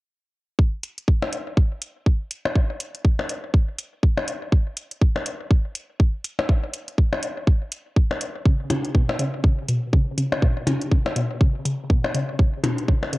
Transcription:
0.59 kick
0.83 closed hi-hat
0.98 closed hi-hat
1.08 kick
1.22 percussion blips
1.33 closed hi-hat
1.57 kick
1.82 closed hi-hat
2.06 kick
2.31 closed hi-hat
2.45 percussion blips
2.55 kick
2.80 closed hi-hat
2.95 closed hi-hat
3.05 kick
3.19 percussion blips
3.29 closed hi-hat
3.54 kick
3.79 closed hi-hat
4.03 kick
4.17 percussion blips
4.28 closed hi-hat
4.52 kick
4.77 closed hi-hat
4.91 closed hi-hat
5.01 kick
5.16 percussion blips
5.26 closed hi-hat
5.51 kick
5.75 closed hi-hat
6.00 kick
6.24 closed hi-hat
6.39 percussion blips
6.49 kick
6.73 closed hi-hat
6.88 closed hi-hat
6.98 kick
7.13 percussion blips
7.23 closed hi-hat
7.47 kick
7.72 closed hi-hat
7.96 kick
8.11 percussion blips
8.21 closed hi-hat
8.45 C#3, kick
8.70 C#3, closed hi-hat, percussion blips
8.85 closed hi-hat
8.95 B2, kick
9.09 percussion blips
9.19 C#3, closed hi-hat
9.44 C#3, kick
9.68 B2, closed hi-hat
9.93 C#3, kick
10.18 C#3, closed hi-hat
10.32 percussion blips
10.42 B2, kick
10.67 C#3, closed hi-hat, percussion blips
10.82 closed hi-hat
10.91 C#3, kick
11.06 percussion blips
11.16 B2, closed hi-hat
11.41 C#3, kick
11.65 C#3, closed hi-hat
11.90 B2, kick
12.04 percussion blips
12.14 C#3, closed hi-hat
12.39 C#3, kick
12.64 B2, closed hi-hat, percussion blips
12.78 closed hi-hat
12.88 C#3, kick
13.03 percussion blips
13.13 C#3, closed hi-hat

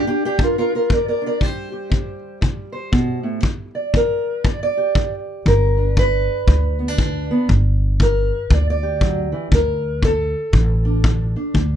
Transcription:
Already playing: G3
0.07 D4 G4
0.25 D4 G4
0.38 G3, kick
0.42 F4 A#4
0.58 F4 A#4
0.75 F4 A#4
0.90 G3 A#4 D5, kick
1.08 A#4 D5
1.22 D4
1.26 A#4 D5
1.40 C3 G3 G4 C5, kick
1.72 G4
1.90 C3, kick
2.41 C3, kick
2.72 C5
2.92 B2, kick
3.23 A2
3.43 G3, kick
3.75 D5
3.94 G3 A#4, kick
4.44 G3 D5, kick
4.63 D5
4.77 G4
4.95 G3, kick
5.46 G1 G2 A#4, kick
5.78 D4
5.97 G2 B4, kick
6.47 D2 G2, kick
6.79 B3
6.88 D4
6.98 G2, kick
7.31 B3
7.49 G1 G3, kick
8.00 G3 A#4, kick
8.50 D2 G3 D5, kick
8.70 D5
8.83 G4
9.01 F#3, kick
9.32 E3
9.51 D2 D3 A#4, kick
10.02 D3 A4, kick
10.53 A1 D3, kick
10.85 D4
11.04 D3, kick
11.36 D4
11.54 D2 D3, kick

